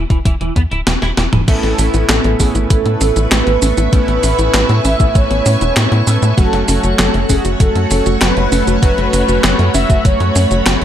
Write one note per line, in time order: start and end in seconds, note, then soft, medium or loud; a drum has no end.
0.10 0.21 E1 medium
0.10 0.18 E3 medium
0.10 kick loud
0.10 closed hi-hat soft
0.25 0.36 E1 loud
0.25 0.33 E3 loud
0.25 kick loud
0.25 closed hi-hat medium
0.41 0.52 E1 medium
0.41 0.52 E3 loud
0.41 closed hi-hat soft
0.56 0.67 E2 loud
0.56 0.61 B3 loud
0.56 kick medium
0.56 closed hi-hat medium
0.71 0.82 D1 medium
0.71 0.79 E4 medium
0.71 closed hi-hat soft
0.87 0.98 E1 loud
0.87 0.91 E3 medium
0.87 snare loud
0.87 closed hi-hat medium
1.02 1.13 E1 medium
1.02 1.10 E4 loud
1.02 snare soft
1.02 closed hi-hat soft
1.17 1.28 E1 medium
1.17 1.25 E3 medium
1.17 snare medium
1.17 closed hi-hat medium
1.33 1.43 E1 medium
1.33 1.40 E3 medium
1.33 closed hi-hat soft
1.33 mid tom medium
1.48 1.59 A1 loud
1.48 2.36 A2 loud
1.48 1.62 A3 medium
1.48 2.36 A3 medium
1.48 2.36 B3 medium
1.48 2.36 C#4 medium
1.48 2.36 E4 loud
1.48 2.05 A4 loud
1.48 6.34 B4 medium
1.48 6.34 E5 medium
1.48 8.79 C#6 loud
1.48 kick loud
1.48 closed hi-hat medium
1.48 crash loud
1.48 shaker soft
1.63 1.74 A1 medium
1.63 1.76 B3 medium
1.63 snare soft
1.63 closed hi-hat soft
1.78 1.89 A1 loud
1.78 1.93 C#4 loud
1.78 open hi-hat medium
1.78 shaker medium
1.94 2.05 A1 medium
1.94 2.07 E4 medium
1.94 closed hi-hat soft
1.94 shaker soft
2.09 2.20 A1 loud
2.09 2.22 A3 loud
2.09 2.41 A4 medium
2.09 snare loud
2.09 clap loud
2.09 closed hi-hat loud
2.09 shaker soft
2.24 2.35 A1 medium
2.24 2.37 B3 medium
2.24 closed hi-hat soft
2.40 2.51 A1 medium
2.40 3.59 A2 medium
2.40 3.59 A3 medium
2.40 3.59 B3 medium
2.40 2.53 C#4 loud
2.40 3.59 C#4 medium
2.40 3.59 E4 medium
2.40 2.54 G#4 medium
2.40 kick medium
2.40 open hi-hat medium
2.40 shaker medium
2.55 2.66 A1 medium
2.55 2.63 E4 medium
2.55 closed hi-hat soft
2.55 shaker soft
2.70 2.81 A1 loud
2.70 2.85 A3 medium
2.70 3.28 A4 loud
2.70 kick loud
2.70 closed hi-hat loud
2.70 shaker soft
2.86 2.96 A2 medium
2.86 2.99 B3 medium
2.86 closed hi-hat soft
3.01 3.12 A1 loud
3.01 3.15 C#4 loud
3.01 open hi-hat medium
3.01 shaker medium
3.16 3.27 A1 medium
3.16 3.29 E4 medium
3.16 closed hi-hat soft
3.16 shaker soft
3.32 3.42 A1 loud
3.32 3.45 A3 loud
3.32 3.92 B4 loud
3.32 snare loud
3.32 clap loud
3.32 closed hi-hat medium
3.32 shaker soft
3.47 3.58 A1 medium
3.47 3.60 B3 medium
3.47 closed hi-hat soft
3.62 3.73 A1 loud
3.62 3.89 A2 medium
3.62 3.89 A3 medium
3.62 3.89 B3 medium
3.62 3.75 C#4 loud
3.62 3.89 C#4 medium
3.62 3.89 A4 medium
3.62 open hi-hat medium
3.62 shaker medium
3.77 3.88 A1 medium
3.77 3.85 E4 medium
3.77 closed hi-hat soft
3.77 shaker soft
3.93 4.04 A1 loud
3.93 4.81 A2 loud
3.93 4.07 A3 medium
3.93 4.81 A3 medium
3.93 4.81 B3 medium
3.93 4.81 C#4 medium
3.93 4.81 E4 loud
3.93 4.87 B4 loud
3.93 6.35 G#5 medium
3.93 kick loud
3.93 closed hi-hat medium
3.93 shaker soft
4.08 4.19 A1 medium
4.08 4.21 B3 medium
4.08 closed hi-hat soft
4.23 4.34 A1 loud
4.23 4.38 C#4 loud
4.23 open hi-hat medium
4.23 shaker medium
4.39 4.49 A1 medium
4.39 4.52 E4 medium
4.39 closed hi-hat soft
4.39 shaker soft
4.54 4.65 A1 loud
4.54 4.67 A3 loud
4.54 snare loud
4.54 clap medium
4.54 closed hi-hat medium
4.54 shaker soft
4.69 4.80 A2 medium
4.69 4.82 B3 medium
4.69 closed hi-hat soft
4.85 4.95 A1 medium
4.85 6.03 A2 medium
4.85 6.03 A3 medium
4.85 6.03 B3 medium
4.85 6.03 C#4 medium
4.85 4.98 C#4 loud
4.85 6.03 E4 medium
4.85 5.13 E5 loud
4.85 open hi-hat medium
4.85 shaker medium
5.00 5.11 A1 medium
5.00 5.08 E4 medium
5.00 kick loud
5.00 closed hi-hat soft
5.00 shaker soft
5.15 5.26 A1 loud
5.15 5.30 A3 medium
5.15 6.03 C#5 loud
5.15 kick loud
5.15 closed hi-hat medium
5.15 shaker soft
5.31 5.41 A1 medium
5.31 5.44 B3 medium
5.31 closed hi-hat soft
5.46 5.57 A2 loud
5.46 5.60 C#4 loud
5.46 open hi-hat medium
5.46 shaker medium
5.61 5.72 E1 medium
5.61 5.74 E4 medium
5.61 closed hi-hat soft
5.61 shaker soft
5.76 5.87 A2 loud
5.76 5.89 A3 loud
5.76 snare loud
5.76 clap loud
5.76 closed hi-hat loud
5.76 shaker soft
5.92 6.03 A2 medium
5.92 6.05 B3 medium
5.92 closed hi-hat soft
6.07 6.18 A2 medium
6.07 6.34 A3 medium
6.07 6.34 B3 medium
6.07 6.20 C#4 loud
6.07 6.34 C#4 medium
6.07 6.34 A4 medium
6.07 open hi-hat medium
6.07 shaker medium
6.22 6.33 A2 medium
6.22 6.30 E4 medium
6.22 closed hi-hat soft
6.22 shaker soft
6.38 6.48 F#1 loud
6.38 6.52 F#3 medium
6.38 7.26 F#3 loud
6.38 10.85 A3 medium
6.38 7.26 A3 medium
6.38 7.26 C#4 medium
6.38 7.26 F#4 loud
6.38 6.98 A4 loud
6.38 10.85 C#5 medium
6.38 10.85 F#5 medium
6.38 kick loud
6.38 closed hi-hat loud
6.38 shaker soft
6.53 6.64 F#1 medium
6.53 6.66 A3 medium
6.53 snare soft
6.53 closed hi-hat soft
6.68 6.79 F#1 loud
6.68 6.83 C#4 loud
6.68 open hi-hat medium
6.68 shaker medium
6.84 6.94 F#1 medium
6.84 6.97 F#4 medium
6.84 closed hi-hat soft
6.84 shaker soft
6.99 7.10 F#1 loud
6.99 7.12 F#3 loud
6.99 7.21 A4 loud
6.99 snare loud
6.99 clap medium
6.99 closed hi-hat medium
6.99 shaker soft
7.14 7.25 F#1 medium
7.14 7.27 A3 medium
7.14 closed hi-hat soft
7.22 7.30 A4 medium
7.29 7.40 F#1 loud
7.29 8.48 F#3 medium
7.29 8.48 A3 medium
7.29 7.42 C#4 loud
7.29 8.48 C#4 medium
7.29 8.48 F#4 loud
7.29 7.43 G#4 medium
7.29 kick medium
7.29 open hi-hat medium
7.29 shaker medium
7.45 7.56 F#1 medium
7.45 7.53 F#4 medium
7.45 closed hi-hat soft
7.45 shaker soft
7.60 7.71 F#1 loud
7.60 7.75 F#3 medium
7.60 8.17 A4 loud
7.60 kick loud
7.60 closed hi-hat medium
7.60 shaker soft
7.75 7.86 F#2 medium
7.75 7.88 A3 medium
7.75 closed hi-hat soft
7.91 8.02 F#1 medium
7.91 8.05 C#4 loud
7.91 open hi-hat medium
7.91 shaker medium
8.06 8.17 F#1 medium
8.06 8.19 F#4 medium
8.06 closed hi-hat soft
8.06 shaker soft
8.21 8.32 F#1 loud
8.21 8.34 F#3 loud
8.21 8.79 B4 loud
8.21 snare loud
8.21 clap loud
8.21 closed hi-hat loud
8.21 shaker soft
8.37 8.47 F#1 medium
8.37 8.50 A3 medium
8.37 closed hi-hat soft
8.52 8.63 F#1 medium
8.52 8.79 F#3 medium
8.52 8.79 A3 medium
8.52 8.65 C#4 loud
8.52 8.79 C#4 medium
8.52 8.79 A4 medium
8.52 open hi-hat medium
8.52 shaker medium
8.67 8.78 F#1 medium
8.67 8.75 F#4 medium
8.67 closed hi-hat soft
8.67 shaker soft
8.83 8.93 F#1 loud
8.83 8.97 F#3 medium
8.83 9.71 F#3 loud
8.83 9.71 A3 medium
8.83 9.71 C#4 medium
8.83 9.71 F#4 loud
8.83 9.77 B4 loud
8.83 10.85 B5 loud
8.83 kick loud
8.83 closed hi-hat medium
8.83 shaker soft
8.98 9.09 F#1 medium
8.98 9.11 A3 medium
8.98 closed hi-hat soft
9.13 9.24 F#1 medium
9.13 9.28 C#4 loud
9.13 open hi-hat medium
9.13 shaker medium
9.28 9.39 F#1 medium
9.28 9.41 F#4 medium
9.28 closed hi-hat soft
9.28 shaker soft
9.44 9.55 F#1 loud
9.44 9.57 F#3 loud
9.44 snare loud
9.44 clap medium
9.44 closed hi-hat medium
9.44 shaker soft
9.59 9.70 F#2 medium
9.59 9.72 A3 medium
9.59 closed hi-hat soft
9.74 9.85 F#1 loud
9.74 10.85 F#3 medium
9.74 10.85 A3 medium
9.74 10.85 C#4 medium
9.74 9.87 C#4 loud
9.74 10.85 F#4 medium
9.74 10.03 E5 loud
9.74 open hi-hat medium
9.74 shaker medium
9.90 10.01 F#1 medium
9.90 9.98 F#4 medium
9.90 kick loud
9.90 closed hi-hat soft
9.90 shaker soft
10.05 10.16 F#1 loud
10.05 10.20 F#3 medium
10.05 10.85 C#5 loud
10.05 kick loud
10.05 closed hi-hat medium
10.05 shaker soft
10.20 10.31 F#2 medium
10.20 10.33 A3 medium
10.20 closed hi-hat soft
10.36 10.46 F#2 loud
10.36 10.50 C#4 loud
10.36 open hi-hat medium
10.36 shaker medium
10.51 10.62 F#1 medium
10.51 10.64 F#4 medium
10.51 closed hi-hat soft
10.51 shaker soft
10.66 10.77 F#1 loud
10.66 10.79 F#3 loud
10.66 snare loud
10.66 clap medium
10.66 closed hi-hat medium
10.66 shaker soft
10.81 10.85 F#1 medium